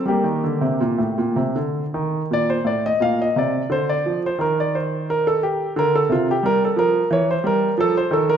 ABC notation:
X:1
M:3/4
L:1/16
Q:1/4=88
K:Gm
V:1 name="Grand piano"
[B,G]8 z4 | [K:Cdor] d c d e f e d2 c d2 c | B d c2 B A G2 B A F G | B A B2 ^c =c B2 A c A B |]
V:2 name="Grand piano" clef=bass
G, E, D, C, B,, A,, B,, C, D,2 E,2 | [K:Cdor] B,,2 A,,2 B,,2 C,2 D,2 F,2 | E,8 D,2 C,2 | G,2 F,2 =E,2 G,2 F,2 _E,2 |]